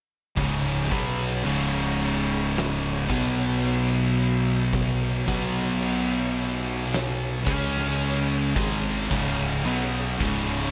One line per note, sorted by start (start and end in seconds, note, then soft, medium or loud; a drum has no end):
0.36 0.88 C#1 loud
0.36 0.90 C#2 loud
0.36 0.90 G#2 loud
0.36 0.90 C#3 loud
0.36 3.07 C#4 medium
0.36 3.07 G#4 medium
0.36 10.71 C#5 medium
0.36 kick loud
0.36 crash medium
0.91 1.42 B1 medium
0.91 1.43 B2 medium
0.91 1.44 F#3 loud
0.91 1.44 B3 loud
0.91 kick loud
0.91 crash medium
1.44 3.06 C#1 loud
1.44 3.07 C#2 loud
1.44 3.07 G#2 loud
1.44 3.07 C#3 loud
1.44 crash medium
2.01 crash medium
2.56 snare loud
2.56 crash medium
3.07 5.24 B1 medium
3.07 5.25 B2 medium
3.07 5.26 F#3 medium
3.07 5.26 B3 medium
3.07 7.43 B3 medium
3.07 7.42 F#4 medium
3.07 kick loud
3.07 crash medium
3.64 crash medium
4.19 crash medium
4.73 kick loud
4.73 crash medium
5.27 7.43 B1 loud
5.27 7.44 B2 medium
5.27 7.44 F#3 loud
5.27 7.45 B3 loud
5.27 kick loud
5.27 crash medium
5.82 crash medium
6.38 crash medium
6.92 snare loud
6.92 crash medium
7.44 8.52 C#2 medium
7.44 8.53 C#3 medium
7.44 8.54 G#3 medium
7.44 8.54 C#4 loud
7.44 10.71 C#4 medium
7.44 10.71 G#4 medium
7.44 kick loud
7.44 crash medium
7.77 snare soft
8.02 crash medium
8.55 9.07 G#1 medium
8.55 9.09 G#2 loud
8.55 9.09 D#3 loud
8.55 9.09 G#3 loud
8.55 kick loud
8.55 crash medium
9.09 9.62 C#1 loud
9.09 9.63 C#2 loud
9.09 9.63 G#2 loud
9.09 9.64 C#3 loud
9.09 kick loud
9.09 crash medium
9.65 10.16 B1 medium
9.65 10.18 B2 medium
9.65 10.18 F#3 loud
9.65 10.18 B3 loud
9.65 crash medium
10.18 10.71 C#1 medium
10.18 10.71 C#2 loud
10.18 10.71 G#2 loud
10.18 10.71 C#3 loud
10.18 kick loud
10.18 crash medium